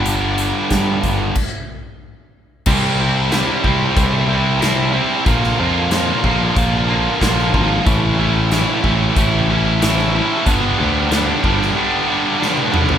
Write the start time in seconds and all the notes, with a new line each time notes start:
Already playing: G1 G2 D3 G3 B3 D4
0.05 closed hi-hat
0.38 closed hi-hat
0.70 G2, kick, snare, closed hi-hat
1.03 G1, kick, closed hi-hat
1.35 kick, crash
2.66 C2 C3 G3 C4 E4, kick, crash
2.99 C3 G3 C4 E4
3.31 C3 G3 C4 E4, snare, closed hi-hat
3.64 C2 C3 G3 C4 E4, kick
3.95 C2 C3 G3 C4 E4, kick, closed hi-hat
4.28 C3 G3 C4 E4
4.60 C3 G3 C4 E4, snare, closed hi-hat
4.92 C3 G3 C4 E4
5.26 A#1 A#2 D3 F3 A#3 F4, kick, closed hi-hat
5.44 snare
5.59 F2 A#2 D3 F3 A#3 F4
5.91 A#2 D3 F3 A#3 F4, snare, closed hi-hat
6.24 A#1 A#2 D3 F3 A#3 F4, kick
6.56 A#1 A#2 D3 F3 A#3 F4, kick, closed hi-hat
6.88 A#2 D3 F3 A#3 F4
7.20 A#1 A#2 D3 F3 A#3 F4, kick, snare, closed hi-hat
7.39 snare
7.53 G#1 A#2 D3 F3 A#3 F4, kick
7.85 A1 A2 E3 A3 C#4 E4, kick, closed hi-hat
8.19 A2 E3 A3 C#4 E4
8.51 A2 E3 A3 C#4 E4, snare, closed hi-hat
8.83 A1 A2 E3 A3 C#4 E4, kick
9.16 A1 A2 E3 A3 C#4 E4, kick, closed hi-hat
9.49 A2 E3 A3 C#4 E4
9.81 A2 E3 A3 C#4 E4, snare, closed hi-hat
9.99 snare
10.14 A2 E3 A3 C#4 E4
10.46 G1 G2 D3 G3 B3 D4, kick, closed hi-hat
10.78 D2 G2 D3 G3 B3 D4
11.10 G2 D3 G3 B3 D4, snare, closed hi-hat
11.42 G1 G2 D3 G3 B3 D4, kick
11.62 snare
11.75 G2 D3 G3 B3 D4
12.07 G2 D3 G3 B3 D4
12.39 G2 D3 G3 B3 D4, snare
12.57 high tom
12.71 G2 D3 G3 B3 D4, mid tom
12.89 floor tom